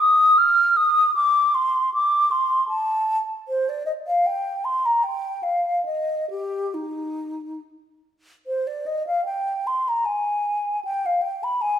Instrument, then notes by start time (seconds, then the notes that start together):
flute
0.00 D#6
0.38 F6
0.76 D#6
1.15 D6
1.54 C6
1.94 D6
2.31 C6
2.68 A5
3.48 C5
3.69 D5
3.86 D#5
4.07 F5
4.26 G5
4.65 C6
4.85 A#5
5.03 G5
5.43 F5
5.85 D#5
6.30 G4
6.74 D#4
8.47 C5
8.67 D5
8.86 D#5
9.07 F5
9.25 G5
9.67 C6
9.88 A#5
10.05 G#5
10.84 G5
11.06 F5
11.21 G5
11.43 B5
11.61 G#5